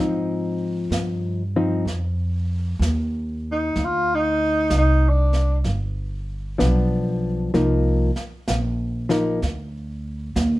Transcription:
Already playing: upright bass G#2, hollow-body jazz guitar F3
0.00 hollow-body jazz guitar C4 D#4
0.91 upright bass G2, snare, hi-hat pedal
1.56 hollow-body jazz guitar F3 C4 D#4
1.85 upright bass F2, brush sweep, snare
2.79 upright bass D#2, snare, hi-hat pedal
3.52 tenor saxophone D#4
3.76 upright bass D2, brush sweep, snare
3.84 tenor saxophone F4
4.15 tenor saxophone D#4
4.70 upright bass C2, snare, hi-hat pedal
4.78 tenor saxophone D#4
5.09 tenor saxophone D4
5.33 snare
5.64 upright bass G1, brush sweep, snare
6.58 upright bass B1, hollow-body jazz guitar F3 B3 D4, snare, hi-hat pedal
7.54 upright bass C2, hollow-body jazz guitar F3 A#3 D#4, brush sweep, snare
8.16 muted upright bass stroke, snare
8.48 upright bass A#1, snare, hi-hat pedal
9.09 hollow-body jazz guitar F3 A#3 D#4, snare
9.42 upright bass D2, brush sweep, snare
10.36 upright bass D#2, snare, hi-hat pedal

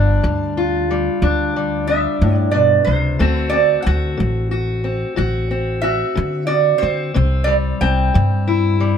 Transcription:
Already playing: upright bass G1, steel-string acoustic guitar G3 D4, resonator guitar played with a steel bar F5
0.23 upright bass D2, steel-string acoustic guitar G2
0.57 steel-string acoustic guitar F4
0.91 steel-string acoustic guitar G3
1.22 upright bass D2, steel-string acoustic guitar G2 D4
1.56 steel-string acoustic guitar G3
1.87 steel-string acoustic guitar D4, resonator guitar played with a steel bar E5
2.22 upright bass G2, steel-string acoustic guitar A2
2.34 resonator guitar played with a steel bar D5
2.51 steel-string acoustic guitar B2, resonator guitar played with a steel bar D5
2.85 upright bass C#2, steel-string acoustic guitar C3, resonator guitar played with a steel bar C5
3.19 upright bass D2, steel-string acoustic guitar D3 A3 C4 F#4
3.34 resonator guitar played with a steel bar B4
3.50 steel-string acoustic guitar C4, resonator guitar played with a steel bar D5
3.82 resonator guitar played with a steel bar F#5
3.86 upright bass D2, steel-string acoustic guitar F#4
4.17 upright bass A1, steel-string acoustic guitar D3
4.51 steel-string acoustic guitar F#4
4.84 steel-string acoustic guitar C4
5.16 upright bass A1, steel-string acoustic guitar D3 F#4
5.51 steel-string acoustic guitar C4
5.82 steel-string acoustic guitar F#4, resonator guitar played with a steel bar E5
6.15 steel-string acoustic guitar D3, upright bass D3
6.47 steel-string acoustic guitar F#4, resonator guitar played with a steel bar D5
6.78 steel-string acoustic guitar C4, resonator guitar played with a steel bar C5
6.83 upright bass D3
7.14 upright bass C2, steel-string acoustic guitar C3 C4
7.44 steel-string acoustic guitar G3, resonator guitar played with a steel bar D5
7.81 upright bass C2, steel-string acoustic guitar C4, resonator guitar played with a steel bar G5
8.14 upright bass G2, steel-string acoustic guitar C3
8.47 steel-string acoustic guitar E4
8.80 steel-string acoustic guitar G3

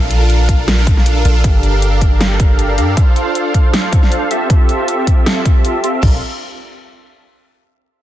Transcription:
Already playing: 808-style bass A#1, supersaw synth D4 F4 A4 A#4 F5
0.11 closed hi-hat
0.30 closed hi-hat
0.49 kick, closed hi-hat
0.68 snare, closed hi-hat
0.87 kick, closed hi-hat
0.97 snare
1.06 closed hi-hat
1.25 808-style bass A#1, supersaw synth D4 F4 A4 A#4 F5, closed hi-hat
1.44 808-style bass G1, supersaw synth D4 G4 A4 A#4 F5, kick, closed hi-hat
1.63 closed hi-hat
1.82 closed hi-hat
2.01 kick, closed hi-hat
2.21 snare, closed hi-hat
2.40 kick, closed hi-hat
2.59 closed hi-hat
2.78 808-style bass G2, supersaw synth D4 G4 A4 A#4 F5, closed hi-hat
2.97 supersaw synth D4 F4 A4 C5 F5, kick, closed hi-hat
3.16 closed hi-hat
3.35 closed hi-hat
3.54 kick, closed hi-hat
3.74 snare, closed hi-hat
3.93 kick, closed hi-hat
4.03 snare
4.12 closed hi-hat
4.31 supersaw synth C4 F4 G4 A4 E5, closed hi-hat
4.50 supersaw synth C4 G4 E5, kick, closed hi-hat
4.69 closed hi-hat
4.88 closed hi-hat
5.07 kick, closed hi-hat
5.26 snare, closed hi-hat
5.45 kick, closed hi-hat
5.65 closed hi-hat
5.84 supersaw synth C4 F4 G4 A4 E5, closed hi-hat
6.03 808-style bass A#1, supersaw synth D4 F4 A4 A#4 F5, kick, crash

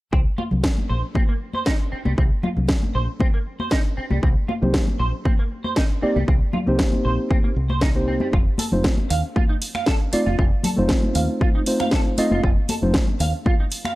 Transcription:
0.12 fingered electric bass C2, clean electric guitar C4, kick
0.38 clean electric guitar F4, high conga
0.51 fingered electric bass C2, low conga
0.64 kick, snare
0.78 high conga
0.89 fingered electric bass A#1, clean electric guitar C5
1.15 clean electric guitar C4, kick, high conga
1.29 clean electric guitar A#3
1.54 clean electric guitar C5, high conga
1.66 clean electric guitar D#4, kick, snare
1.92 clean electric guitar C4, muted fingered electric bass stroke
2.05 fingered electric bass C2, clean electric guitar G3, high conga
2.18 fingered electric bass C2, clean electric guitar C4, kick
2.43 clean electric guitar F4, high conga, low conga
2.57 fingered electric bass C2, low conga
2.69 kick, snare
2.83 high conga
2.95 fingered electric bass A#1, clean electric guitar C5
3.20 clean electric guitar C4, kick, high conga
3.34 clean electric guitar A#3
3.60 clean electric guitar C5, high conga
3.71 clean electric guitar D#4, kick, snare
3.97 clean electric guitar C4, muted fingered electric bass stroke
4.10 fingered electric bass C2, clean electric guitar G3, high conga
4.23 fingered electric bass C2, clean electric guitar C4, kick
4.48 clean electric guitar F4, high conga
4.62 fingered electric bass C2, reed electric piano A#3 C4 D#4 G4 C5, low conga
4.74 kick, snare
4.88 high conga
5.00 fingered electric bass A#1, clean electric guitar C5
5.25 clean electric guitar C4, kick, high conga
5.39 clean electric guitar A#3
5.64 clean electric guitar C5, high conga
5.76 clean electric guitar D#4, kick, snare
6.02 reed electric piano A#3 C4 D#4 G4 D5, clean electric guitar C4, muted fingered electric bass stroke
6.16 fingered electric bass C2, clean electric guitar G3, high conga
6.28 fingered electric bass C2, clean electric guitar C4, kick
6.53 clean electric guitar F4, high conga, low conga
6.66 fingered electric bass C2, reed electric piano A#3 C4 D#4 G4 C5, low conga
6.79 kick, snare
6.93 high conga
7.05 fingered electric bass A#1, clean electric guitar C5
7.30 clean electric guitar C4, kick, high conga
7.44 clean electric guitar A#3
7.56 fingered electric bass C2
7.70 clean electric guitar C5, high conga
7.81 clean electric guitar D#4, kick, snare
7.95 reed electric piano A#3 C4 D#4 G4 C5
8.08 clean electric guitar C4
8.20 clean electric guitar G3, high conga
8.33 fingered electric bass F1, clean electric guitar F4, kick
8.58 clean electric guitar A4, open hi-hat, high conga
8.72 fingered electric bass F1, reed electric piano A3 C4 D#4 F4 C5, low conga
8.84 kick, snare
8.97 high conga
9.10 fingered electric bass D#2, clean electric guitar F5, open hi-hat
9.36 clean electric guitar F4, kick, high conga
9.49 clean electric guitar D#4
9.62 open hi-hat
9.75 clean electric guitar F5, finger snap, high conga
9.86 clean electric guitar A4, kick, snare
10.13 reed electric piano A3 C4 D#4 F4 D5, clean electric guitar F4, muted fingered electric bass stroke, open hi-hat
10.26 fingered electric bass F1, clean electric guitar F4, high conga
10.39 fingered electric bass F1, clean electric guitar F4, kick
10.63 clean electric guitar A4, open hi-hat, high conga, low conga
10.77 fingered electric bass F1, reed electric piano A3 C4 D#4 F4 C5, low conga
10.89 kick, snare
11.03 high conga
11.15 fingered electric bass D#2, clean electric guitar F5, open hi-hat
11.41 clean electric guitar F4, kick, high conga
11.55 clean electric guitar D#4
11.66 reed electric piano A3 C4 D#4 F4 C5, open hi-hat
11.80 clean electric guitar F5, finger snap, high conga
11.91 clean electric guitar A4, kick, snare
12.18 reed electric piano A3 C4 D#4 F4 D#5, clean electric guitar F4, muted fingered electric bass stroke, open hi-hat
12.31 fingered electric bass F1, clean electric guitar F4, high conga
12.44 fingered electric bass F1, clean electric guitar F4, kick
12.69 clean electric guitar A4, open hi-hat, high conga
12.82 fingered electric bass F1, reed electric piano A3 C4 D#4 F4 C5, low conga
12.94 kick, snare
13.07 high conga
13.20 fingered electric bass D#2, clean electric guitar F5, open hi-hat
13.46 clean electric guitar F4, kick, high conga
13.60 clean electric guitar D#4
13.72 open hi-hat
13.85 clean electric guitar F5, finger snap, high conga

